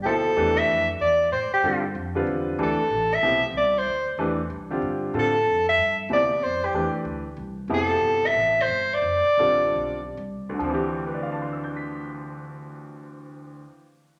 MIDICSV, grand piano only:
0, 0, Header, 1, 2, 480
1, 0, Start_track
1, 0, Tempo, 318810
1, 65, Time_signature, 4, 2, 24, 8
1, 11585, Tempo, 332410
1, 13505, Tempo, 384369
1, 14945, Tempo, 454201
1, 19191, End_track
2, 0, Start_track
2, 0, Title_t, "Grand piano"
2, 0, Program_c, 0, 0
2, 76, Note_on_c, 0, 53, 64
2, 82, Note_on_c, 0, 64, 64
2, 83, Note_on_c, 0, 47, 60
2, 91, Note_on_c, 0, 69, 66
2, 94, Note_on_c, 0, 72, 66
2, 532, Note_off_c, 0, 53, 0
2, 535, Note_off_c, 0, 47, 0
2, 535, Note_off_c, 0, 64, 0
2, 539, Note_off_c, 0, 69, 0
2, 541, Note_off_c, 0, 72, 0
2, 551, Note_on_c, 0, 52, 64
2, 553, Note_on_c, 0, 57, 61
2, 562, Note_on_c, 0, 62, 61
2, 567, Note_on_c, 0, 67, 63
2, 572, Note_on_c, 0, 71, 73
2, 1270, Note_off_c, 0, 52, 0
2, 1271, Note_off_c, 0, 57, 0
2, 1276, Note_off_c, 0, 62, 0
2, 1278, Note_off_c, 0, 67, 0
2, 1281, Note_off_c, 0, 71, 0
2, 2460, Note_on_c, 0, 55, 51
2, 2463, Note_on_c, 0, 50, 61
2, 2469, Note_on_c, 0, 60, 49
2, 2469, Note_on_c, 0, 65, 53
2, 2478, Note_on_c, 0, 69, 64
2, 2734, Note_off_c, 0, 55, 0
2, 2736, Note_off_c, 0, 50, 0
2, 2739, Note_off_c, 0, 60, 0
2, 2739, Note_off_c, 0, 65, 0
2, 2744, Note_off_c, 0, 69, 0
2, 3239, Note_on_c, 0, 50, 64
2, 3246, Note_on_c, 0, 55, 64
2, 3251, Note_on_c, 0, 60, 58
2, 3255, Note_on_c, 0, 65, 67
2, 3257, Note_on_c, 0, 71, 73
2, 3861, Note_off_c, 0, 50, 0
2, 3865, Note_off_c, 0, 55, 0
2, 3867, Note_off_c, 0, 60, 0
2, 3870, Note_off_c, 0, 65, 0
2, 3871, Note_off_c, 0, 71, 0
2, 3895, Note_on_c, 0, 52, 68
2, 3897, Note_on_c, 0, 57, 56
2, 3905, Note_on_c, 0, 62, 59
2, 3909, Note_on_c, 0, 71, 65
2, 3911, Note_on_c, 0, 67, 59
2, 4172, Note_off_c, 0, 52, 0
2, 4173, Note_off_c, 0, 57, 0
2, 4176, Note_off_c, 0, 62, 0
2, 4178, Note_off_c, 0, 71, 0
2, 4179, Note_off_c, 0, 67, 0
2, 4857, Note_on_c, 0, 48, 59
2, 4860, Note_on_c, 0, 53, 56
2, 4862, Note_on_c, 0, 59, 56
2, 4865, Note_on_c, 0, 64, 53
2, 4872, Note_on_c, 0, 67, 62
2, 5132, Note_off_c, 0, 48, 0
2, 5134, Note_off_c, 0, 53, 0
2, 5135, Note_off_c, 0, 59, 0
2, 5137, Note_off_c, 0, 64, 0
2, 5140, Note_off_c, 0, 67, 0
2, 6300, Note_on_c, 0, 52, 63
2, 6304, Note_on_c, 0, 57, 57
2, 6314, Note_on_c, 0, 62, 60
2, 6315, Note_on_c, 0, 67, 55
2, 6315, Note_on_c, 0, 71, 69
2, 6575, Note_off_c, 0, 52, 0
2, 6576, Note_off_c, 0, 57, 0
2, 6581, Note_off_c, 0, 62, 0
2, 6582, Note_off_c, 0, 67, 0
2, 6582, Note_off_c, 0, 71, 0
2, 7082, Note_on_c, 0, 50, 62
2, 7084, Note_on_c, 0, 55, 53
2, 7091, Note_on_c, 0, 60, 54
2, 7096, Note_on_c, 0, 65, 55
2, 7100, Note_on_c, 0, 67, 63
2, 7704, Note_off_c, 0, 50, 0
2, 7705, Note_off_c, 0, 55, 0
2, 7709, Note_off_c, 0, 60, 0
2, 7711, Note_off_c, 0, 65, 0
2, 7713, Note_off_c, 0, 67, 0
2, 7735, Note_on_c, 0, 50, 63
2, 7738, Note_on_c, 0, 55, 53
2, 7744, Note_on_c, 0, 60, 56
2, 7750, Note_on_c, 0, 65, 62
2, 7753, Note_on_c, 0, 69, 67
2, 8012, Note_off_c, 0, 50, 0
2, 8014, Note_off_c, 0, 55, 0
2, 8017, Note_off_c, 0, 60, 0
2, 8020, Note_off_c, 0, 65, 0
2, 8021, Note_off_c, 0, 69, 0
2, 9178, Note_on_c, 0, 48, 59
2, 9185, Note_on_c, 0, 53, 50
2, 9188, Note_on_c, 0, 59, 53
2, 9196, Note_on_c, 0, 64, 48
2, 9198, Note_on_c, 0, 67, 56
2, 9455, Note_off_c, 0, 48, 0
2, 9458, Note_off_c, 0, 53, 0
2, 9460, Note_off_c, 0, 59, 0
2, 9463, Note_off_c, 0, 64, 0
2, 9465, Note_off_c, 0, 67, 0
2, 10146, Note_on_c, 0, 52, 58
2, 10155, Note_on_c, 0, 57, 49
2, 10156, Note_on_c, 0, 62, 49
2, 10159, Note_on_c, 0, 67, 55
2, 10164, Note_on_c, 0, 71, 60
2, 10870, Note_off_c, 0, 52, 0
2, 10874, Note_off_c, 0, 57, 0
2, 10874, Note_off_c, 0, 62, 0
2, 10876, Note_off_c, 0, 67, 0
2, 10878, Note_off_c, 0, 71, 0
2, 11583, Note_on_c, 0, 48, 63
2, 11588, Note_on_c, 0, 53, 59
2, 11592, Note_on_c, 0, 59, 58
2, 11596, Note_on_c, 0, 64, 62
2, 11602, Note_on_c, 0, 67, 73
2, 12895, Note_off_c, 0, 48, 0
2, 12898, Note_off_c, 0, 53, 0
2, 12900, Note_off_c, 0, 59, 0
2, 12902, Note_off_c, 0, 64, 0
2, 12905, Note_off_c, 0, 67, 0
2, 13957, Note_on_c, 0, 50, 53
2, 13961, Note_on_c, 0, 55, 56
2, 13962, Note_on_c, 0, 60, 55
2, 13967, Note_on_c, 0, 65, 54
2, 13968, Note_on_c, 0, 69, 63
2, 14689, Note_off_c, 0, 50, 0
2, 14691, Note_off_c, 0, 55, 0
2, 14692, Note_off_c, 0, 60, 0
2, 14694, Note_off_c, 0, 65, 0
2, 14695, Note_off_c, 0, 69, 0
2, 15278, Note_on_c, 0, 38, 63
2, 15330, Note_on_c, 0, 50, 57
2, 15381, Note_on_c, 0, 53, 62
2, 15436, Note_on_c, 0, 60, 60
2, 15493, Note_on_c, 0, 52, 56
2, 15540, Note_on_c, 0, 67, 73
2, 15889, Note_on_c, 0, 71, 46
2, 15965, Note_on_c, 0, 74, 43
2, 16055, Note_on_c, 0, 77, 42
2, 16149, Note_on_c, 0, 81, 42
2, 16257, Note_on_c, 0, 84, 36
2, 16371, Note_on_c, 0, 88, 36
2, 16490, Note_on_c, 0, 91, 36
2, 16624, Note_on_c, 0, 95, 35
2, 18554, Note_off_c, 0, 38, 0
2, 18606, Note_off_c, 0, 50, 0
2, 18657, Note_off_c, 0, 53, 0
2, 18712, Note_off_c, 0, 60, 0
2, 18768, Note_off_c, 0, 52, 0
2, 18815, Note_off_c, 0, 67, 0
2, 19122, Note_off_c, 0, 71, 0
2, 19191, Note_off_c, 0, 74, 0
2, 19191, Note_off_c, 0, 77, 0
2, 19191, Note_off_c, 0, 81, 0
2, 19191, Note_off_c, 0, 84, 0
2, 19191, Note_off_c, 0, 88, 0
2, 19191, Note_off_c, 0, 91, 0
2, 19191, Note_off_c, 0, 95, 0
2, 19191, End_track
0, 0, End_of_file